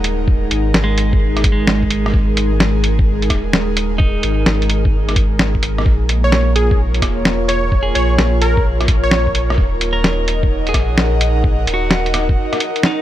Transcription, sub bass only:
Already playing: D#1
0.51 G#1
0.74 G#1
2.14 G#1
3.30 D#1
4.23 G#1
4.46 G#1
5.86 A#1
7.02 E1
7.95 A#1
8.19 A#1
9.58 D#1
10.74 A#1
11.67 D#1
11.90 D#1

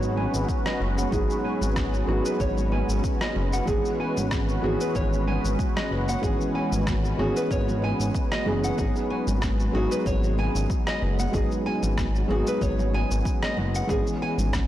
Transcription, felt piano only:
Already playing: F#3 G#3 B3 D#4 G#4
1.10 F#3 G#3 B3 D#4 G#4
2.06 F#3 G#3 B3 D#4 G#4
3.65 E3 G#3 B3 C#4
3.69 G#4
4.61 E3 G#3 B3 C#4 G#4
6.21 E3 G#3 B3 C#4
6.25 G#4
7.17 E3 G#3 B3 C#4
7.21 G#4
8.46 E3 G#3 B3 C#4 G#4
8.77 F#3 G#3 B3 D#4 G#4
9.72 F#3 G#3 B3 D#4
9.76 G#4
11.31 F#3 G#3 B3 D#4
11.35 G#4
12.28 F#3 G#3 B3 D#4 G#4
13.87 E3 G#3 B3 C#4 G#4

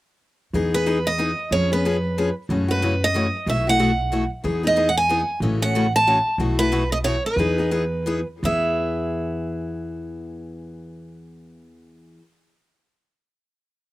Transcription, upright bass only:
0.53 E2
1.51 F2
2.49 F#2
3.46 B1
4.44 E2
5.40 A1
6.38 B1
7.36 E2
8.43 E2

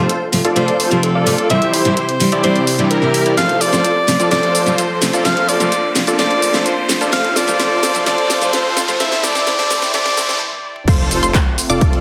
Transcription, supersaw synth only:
Already playing: F4 A4 C5
0.45 F4 A4 D5
0.80 F4 A4 C5
1.15 F4 A4 D5
1.50 E4 G4 C5
1.85 E4 G4 C5
2.32 E4 G4 D5
2.79 E4 G4 D5
2.91 E4 G4 A#4
3.26 E4 G4 D5
3.38 F4 A4 C5
3.73 F4 A4 C5
4.20 F4 A4 D5
4.31 F4 A4 C5
4.67 F4 A4 C5
5.13 F4 A4 D5
5.25 F4 A4 C5
5.60 F4 A4 C5
6.07 F4 A4 D5
6.19 F4 A4 C5
6.54 F4 A4 C5
7.01 F4 A4 D5
7.13 F4 A4 C5
7.48 F4 A4 C5
7.60 F4 A4 C5
7.95 F4 A4 C5
8.06 F4 A4 C5
8.42 F4 A4 C5
8.53 F4 A4 C5
8.88 F4 A4 C5
9.00 E4 A4 C5
9.24 E4 A4 C5
9.47 E4 A4 C5
9.70 E4 A4 C5
9.94 E4 A4 C5
10.17 E4 A4 C5
10.88 F4 A4 C5
11.23 F4 A4 C5
11.70 F4 A4 D5

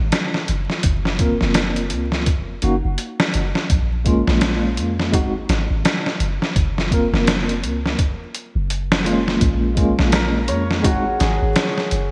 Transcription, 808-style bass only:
0.00 G#1
0.49 F#1
0.84 F#1
1.42 F#1
1.92 C#2
2.27 F#1
2.63 F#1
2.85 F#1
3.35 F#1
3.71 A#1
4.28 A#1
4.78 F2
5.14 G#1
5.49 G#1
5.70 G#1
6.20 F#1
6.56 F#1
7.13 F#1
7.63 C#2
8.55 F#1
9.42 A#1
9.99 A#1
10.49 F2
10.85 G#1
11.21 G#1
11.42 G#1
11.92 F#1

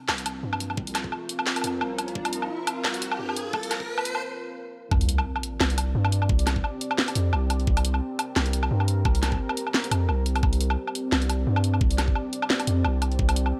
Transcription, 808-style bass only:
0.09 C2
0.43 G2
0.77 C2
1.64 F2
1.81 C2
2.15 C2
2.84 C2
3.19 G2
3.53 C2
4.92 C2
5.61 C2
5.95 G2
6.29 C2
7.16 F2
7.33 C2
7.67 C2
8.36 C2
8.71 G2
9.05 C2
9.91 F2
10.09 C2
10.43 C2
11.12 C2
11.47 G2
11.81 C2
12.67 F2
12.85 C2
13.19 C2

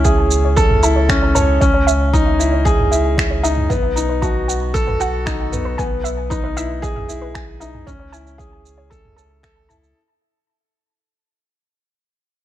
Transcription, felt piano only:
Already playing: C#4 E4
0.04 G#4
0.56 A4
0.83 E4
1.09 C#4
1.35 C#5
1.61 C#4
2.13 D#4
2.39 E4
2.65 G#4
2.91 E4
3.43 D#4
3.70 B3
3.96 D#4
4.22 F#4
4.74 A4
5.00 F#4
5.26 D#4
5.52 B3
5.78 B3
6.30 D#4
6.57 E4
6.82 G#4
7.09 E4
7.61 D#4
7.87 C#4
8.12 E4
8.38 G#4
8.91 A4
9.16 A4
9.43 A4
9.69 E4

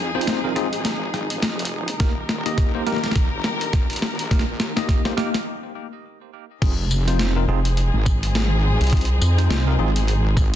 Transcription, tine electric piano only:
0.15 C4 D#4 F4 C5
0.44 C4 D#4 F4 A#4
0.56 C4 D#4 F4 G#4
2.00 A#3 D#4 G4 A#4
2.46 A#3 D#4 G4 D#5
2.75 A#3 D#4 G4 C5
2.86 A#3 D#4 G4 A#4
4.31 A#3 D#4 G4 A#4
4.76 A#3 D#4 G4 D#5
5.05 A#3 D#4 G4 C5
5.17 A#3 D#4 G4 A#4
6.62 C4 D#4 F4 G#4
7.07 C4 D#4 F4 C5
7.36 C4 D#4 F4 A#4
7.48 C4 D#4 F4 G#4
8.93 C4 D#4 F4 G#4
9.38 C4 D#4 F4 C5
9.67 C4 D#4 F4 A#4
9.79 C4 D#4 F4 G#4

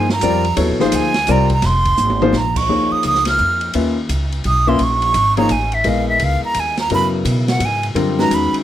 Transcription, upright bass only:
Already playing: G2
0.23 F2
0.57 D#2
0.69 A#1
0.82 G#1
0.93 D2
1.28 C2
1.63 F1
1.98 G#1
2.33 A#1
2.69 D#2
2.92 muted upright bass stroke
3.04 C#2
3.39 F2
3.75 D#2
4.09 C#2
4.45 B1
4.79 A#1
5.14 G#1
5.50 A1
5.85 A#1
6.20 C#2
6.43 muted upright bass stroke
6.55 D#2
6.91 F#2
7.25 B2
7.60 G#2
7.95 F#2
8.30 E2
8.54 muted upright bass stroke

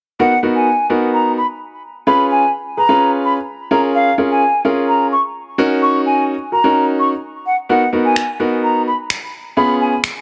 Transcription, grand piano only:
0.19 B3 D#4 F#4 A#4
0.43 B3 D#4 F#4 A#4
0.90 B3 D#4 F#4 A#4
2.07 C#4 F4 G#4 B4
2.77 G#4 B4
2.89 C#4 F4 G#4 B4
3.71 C#4 F4 G#4 A#4
4.18 C#4 F4 G#4 A#4
4.65 C#4 F4 G#4 A#4
5.58 C#4 D#4 F#4 A#4
6.52 F#4 A#4
6.64 C#4 D#4 F#4 A#4
7.69 B3 D#4 F#4 A#4
7.93 B3 D#4 F#4 A#4
8.40 B3 D#4 F#4 A#4
9.57 B3 C#4 F4 G#4

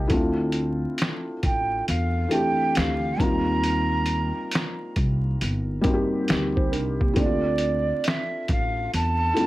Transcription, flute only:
1.45 G5
1.88 F5
2.32 G5
2.77 F5
3.21 A#5
7.18 D5
8.07 E5
8.51 F5
8.95 A5

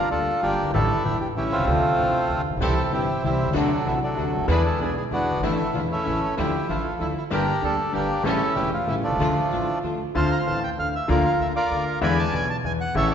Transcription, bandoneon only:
0.11 D4 F4 A4
0.43 A#3 D4 G4
0.74 D4 E4 A4
1.05 G4
1.21 G4
1.37 C#4 E4 G4
1.52 A3 C4 F4
2.62 C4 E4 A4
2.85 A4
2.93 C4 E4 G4
3.25 G3 C4 E4
3.57 F#3 A3 D4
3.87 E4
4.03 F#3 A3 D4
4.50 D4 G#4 B4
4.66 A4
4.81 G#4
4.97 G#4
5.13 B3 D4 F#4
5.44 A3 E4
5.74 F4
5.91 A3 C#4 E4
6.38 E4 G4
6.69 A3 F4
7.01 E4
7.18 E4
7.33 D4 G4 A#4
7.64 D4 A4
7.94 A#3 D4 G4
8.25 C#4 E4 A4
8.56 G4
8.73 F4
8.88 E4
9.04 F3 A3 D4
10.16 C5 F5 A5
10.32 A#5
10.47 A5
10.63 G5
10.79 F5
10.95 E5
11.10 F4 A#4 D5
11.25 F5
11.41 E5
11.56 F4 A#4 D5
12.03 D5 G#5 B5
12.19 A5
12.35 G#5
12.50 A5
12.66 G#5
12.81 F#5
12.96 A4 C#5 E5

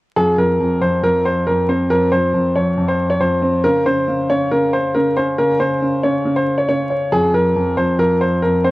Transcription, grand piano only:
0.16 F2
0.38 F2
0.60 F2
0.81 F2
1.03 F2
1.47 F2
1.69 C4
1.90 F2
2.13 F2
2.34 F2
2.56 F2
2.77 F2
3.20 F2
3.42 C4
3.65 C#3
3.86 C#3
4.08 C#3
4.30 C#3
4.51 C#3
4.95 C#3
5.17 C#4
5.38 C#3
5.60 C#3
5.82 C#3
6.04 C#3
6.25 C#3
6.69 C#3
6.90 C#5
7.12 F2
7.33 F2
7.56 F2
7.77 F2
7.99 F2
8.43 F2
8.64 C4

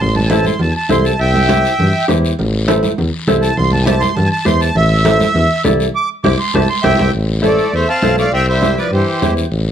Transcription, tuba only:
0.02 A1
0.60 E2
0.90 C2
1.20 C2
1.79 G2
2.09 E2
2.39 A1
2.98 E2
3.27 C2
3.57 C2
4.17 G2
4.46 E2
4.75 A1
5.35 E2
5.65 C2
6.24 C2
6.54 C2
6.84 C2
7.00 C2
7.14 A1
7.73 E2
8.02 B1
8.32 C2
8.91 G2
9.22 E2
9.51 A1

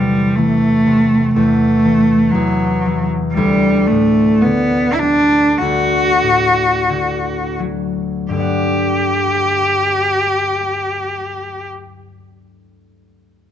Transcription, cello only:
Already playing: G3
0.36 A3
1.34 A3
2.31 F#3
3.33 G3
3.87 A3
4.42 B3
4.93 E4
4.99 D4
5.58 F#4
8.32 G4

